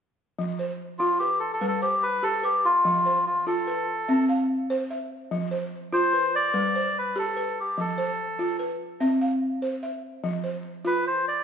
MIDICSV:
0, 0, Header, 1, 3, 480
1, 0, Start_track
1, 0, Tempo, 410397
1, 456, Time_signature, 12, 3, 24, 8
1, 13376, End_track
2, 0, Start_track
2, 0, Title_t, "Balafon"
2, 0, Program_c, 0, 12
2, 451, Note_on_c, 0, 53, 70
2, 693, Note_on_c, 0, 72, 55
2, 933, Note_off_c, 0, 53, 0
2, 1169, Note_on_c, 0, 65, 67
2, 1410, Note_on_c, 0, 71, 53
2, 1414, Note_off_c, 0, 72, 0
2, 1651, Note_off_c, 0, 65, 0
2, 1871, Note_off_c, 0, 71, 0
2, 1885, Note_on_c, 0, 71, 58
2, 1886, Note_on_c, 0, 55, 59
2, 2129, Note_on_c, 0, 72, 53
2, 2370, Note_off_c, 0, 55, 0
2, 2606, Note_on_c, 0, 67, 66
2, 2609, Note_off_c, 0, 71, 0
2, 2846, Note_on_c, 0, 71, 58
2, 2851, Note_off_c, 0, 72, 0
2, 3089, Note_off_c, 0, 67, 0
2, 3333, Note_on_c, 0, 53, 75
2, 3569, Note_off_c, 0, 71, 0
2, 3575, Note_on_c, 0, 72, 58
2, 3813, Note_off_c, 0, 53, 0
2, 4056, Note_on_c, 0, 65, 67
2, 4294, Note_off_c, 0, 72, 0
2, 4296, Note_on_c, 0, 71, 55
2, 4534, Note_off_c, 0, 65, 0
2, 4776, Note_on_c, 0, 76, 53
2, 4780, Note_on_c, 0, 60, 67
2, 5014, Note_off_c, 0, 71, 0
2, 5018, Note_on_c, 0, 77, 55
2, 5256, Note_off_c, 0, 60, 0
2, 5494, Note_off_c, 0, 76, 0
2, 5499, Note_on_c, 0, 72, 72
2, 5735, Note_off_c, 0, 77, 0
2, 5738, Note_on_c, 0, 76, 56
2, 5975, Note_off_c, 0, 72, 0
2, 6215, Note_on_c, 0, 53, 81
2, 6448, Note_on_c, 0, 72, 56
2, 6455, Note_off_c, 0, 76, 0
2, 6693, Note_off_c, 0, 53, 0
2, 6931, Note_on_c, 0, 65, 75
2, 7170, Note_off_c, 0, 72, 0
2, 7172, Note_on_c, 0, 71, 58
2, 7411, Note_off_c, 0, 65, 0
2, 7632, Note_off_c, 0, 71, 0
2, 7646, Note_on_c, 0, 71, 55
2, 7648, Note_on_c, 0, 55, 71
2, 7898, Note_on_c, 0, 72, 59
2, 8130, Note_off_c, 0, 55, 0
2, 8369, Note_off_c, 0, 71, 0
2, 8372, Note_on_c, 0, 67, 70
2, 8615, Note_off_c, 0, 72, 0
2, 8616, Note_on_c, 0, 71, 53
2, 8852, Note_off_c, 0, 67, 0
2, 9096, Note_on_c, 0, 53, 68
2, 9332, Note_on_c, 0, 72, 60
2, 9334, Note_off_c, 0, 71, 0
2, 9574, Note_off_c, 0, 53, 0
2, 9814, Note_on_c, 0, 65, 67
2, 10050, Note_on_c, 0, 71, 56
2, 10052, Note_off_c, 0, 72, 0
2, 10293, Note_off_c, 0, 65, 0
2, 10531, Note_on_c, 0, 60, 64
2, 10534, Note_on_c, 0, 76, 58
2, 10771, Note_off_c, 0, 71, 0
2, 10776, Note_on_c, 0, 77, 53
2, 11012, Note_off_c, 0, 60, 0
2, 11253, Note_off_c, 0, 76, 0
2, 11254, Note_on_c, 0, 72, 61
2, 11494, Note_off_c, 0, 77, 0
2, 11495, Note_on_c, 0, 76, 56
2, 11733, Note_off_c, 0, 72, 0
2, 11973, Note_on_c, 0, 53, 77
2, 12207, Note_on_c, 0, 72, 50
2, 12214, Note_off_c, 0, 76, 0
2, 12453, Note_off_c, 0, 53, 0
2, 12686, Note_on_c, 0, 65, 73
2, 12930, Note_off_c, 0, 72, 0
2, 13169, Note_off_c, 0, 65, 0
2, 13376, End_track
3, 0, Start_track
3, 0, Title_t, "Melodica"
3, 0, Program_c, 1, 22
3, 1153, Note_on_c, 1, 65, 74
3, 1386, Note_off_c, 1, 65, 0
3, 1394, Note_on_c, 1, 67, 72
3, 1626, Note_off_c, 1, 67, 0
3, 1633, Note_on_c, 1, 69, 70
3, 1775, Note_off_c, 1, 69, 0
3, 1793, Note_on_c, 1, 69, 74
3, 1944, Note_off_c, 1, 69, 0
3, 1962, Note_on_c, 1, 69, 78
3, 2116, Note_off_c, 1, 69, 0
3, 2130, Note_on_c, 1, 67, 75
3, 2374, Note_on_c, 1, 71, 84
3, 2379, Note_off_c, 1, 67, 0
3, 2610, Note_on_c, 1, 69, 91
3, 2621, Note_off_c, 1, 71, 0
3, 2856, Note_on_c, 1, 67, 74
3, 2859, Note_off_c, 1, 69, 0
3, 3099, Note_on_c, 1, 65, 77
3, 3102, Note_off_c, 1, 67, 0
3, 3802, Note_off_c, 1, 65, 0
3, 3819, Note_on_c, 1, 65, 68
3, 4039, Note_off_c, 1, 65, 0
3, 4061, Note_on_c, 1, 69, 72
3, 4970, Note_off_c, 1, 69, 0
3, 6937, Note_on_c, 1, 72, 93
3, 7429, Note_off_c, 1, 72, 0
3, 7431, Note_on_c, 1, 74, 95
3, 8163, Note_off_c, 1, 74, 0
3, 8166, Note_on_c, 1, 71, 76
3, 8396, Note_off_c, 1, 71, 0
3, 8405, Note_on_c, 1, 69, 83
3, 8883, Note_off_c, 1, 69, 0
3, 8891, Note_on_c, 1, 67, 67
3, 9118, Note_off_c, 1, 67, 0
3, 9125, Note_on_c, 1, 69, 77
3, 10022, Note_off_c, 1, 69, 0
3, 12711, Note_on_c, 1, 71, 89
3, 12925, Note_off_c, 1, 71, 0
3, 12947, Note_on_c, 1, 72, 77
3, 13163, Note_off_c, 1, 72, 0
3, 13194, Note_on_c, 1, 74, 79
3, 13376, Note_off_c, 1, 74, 0
3, 13376, End_track
0, 0, End_of_file